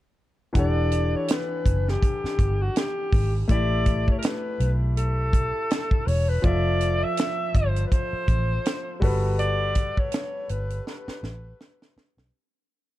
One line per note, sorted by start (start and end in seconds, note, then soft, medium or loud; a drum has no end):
0.53 1.14 E1 medium
0.53 3.44 E3 medium
0.53 3.45 D4 soft
0.53 3.46 G4 soft
0.53 3.46 F#5 soft
0.53 kick medium
0.53 closed hi-hat medium
0.58 3.47 A4 medium
0.58 1.18 D5 medium
0.92 closed hi-hat medium
1.16 1.33 C#5 medium
1.28 1.91 B4 medium
1.28 snare medium
1.28 closed hi-hat medium
1.66 1.95 F#1 medium
1.66 kick medium
1.66 closed hi-hat medium
1.88 2.64 G4 medium
1.88 snare soft
2.02 kick medium
2.02 closed hi-hat medium
2.24 muted fingered electric bass stroke soft
2.24 snare soft
2.39 2.68 G1 medium
2.39 kick medium
2.39 closed hi-hat medium
2.62 2.79 F#4 medium
2.76 3.35 G4 medium
2.76 snare medium
2.76 closed hi-hat medium
3.12 3.42 G#1 medium
3.12 kick medium
3.12 open hi-hat medium
3.48 4.08 A1 medium
3.48 6.39 A3 medium
3.48 6.40 E4 medium
3.48 6.41 G4 medium
3.48 4.10 D5 loud
3.48 kick medium
3.48 closed hi-hat medium
3.52 6.42 E5 medium
3.86 kick medium
3.86 closed hi-hat medium
4.08 4.18 C#5 medium
4.08 kick medium
4.18 4.26 A#4 medium
4.18 closed hi-hat medium
4.24 4.72 B4 medium
4.24 snare medium
4.60 5.51 B1 medium
4.60 closed hi-hat medium
4.97 6.09 A4 medium
4.97 closed hi-hat medium
5.33 kick medium
5.33 closed hi-hat medium
5.70 snare medium
5.70 closed hi-hat medium
5.91 kick medium
6.07 6.37 E1 medium
6.07 6.31 C#5 medium
6.07 open hi-hat medium
6.29 6.47 B4 medium
6.42 7.03 F1 medium
6.42 8.97 F3 medium
6.42 8.98 F4 medium
6.42 8.99 A4 soft
6.42 7.05 D5 loud
6.42 kick medium
6.42 closed hi-hat medium
6.47 8.99 E5 medium
6.81 closed hi-hat medium
7.04 7.57 E5 loud
7.17 snare medium
7.17 closed hi-hat medium
7.55 7.84 G1 medium
7.55 7.86 C5 medium
7.55 kick medium
7.55 closed hi-hat medium
7.76 closed hi-hat medium
7.87 7.94 B4 medium
7.92 9.03 C5 medium
7.92 kick medium
7.92 closed hi-hat medium
8.13 muted fingered electric bass stroke soft
8.28 8.58 A1 medium
8.28 kick medium
8.28 closed hi-hat medium
8.66 snare medium
8.66 closed hi-hat medium
9.00 9.90 G1 medium
9.00 11.91 G3 medium
9.00 11.92 F#4 medium
9.00 11.92 A4 medium
9.00 kick medium
9.00 open hi-hat medium
9.04 11.93 B4 medium
9.39 10.01 D5 loud
9.39 closed hi-hat medium
9.75 kick medium
9.75 closed hi-hat medium
9.97 10.52 C#5 medium
9.97 kick medium
10.12 snare loud
10.12 closed hi-hat loud
10.49 10.79 G1 medium
10.49 10.87 B4 medium
10.49 closed hi-hat medium
10.70 closed hi-hat medium
10.87 11.93 B4 medium
10.87 snare soft
11.08 muted fingered electric bass stroke soft
11.08 snare soft
11.23 11.52 A1 medium
11.23 snare medium
11.61 snare medium
11.82 snare medium
11.96 muted fingered electric bass stroke soft
11.96 snare medium
12.17 12.30 B1 medium
12.17 snare medium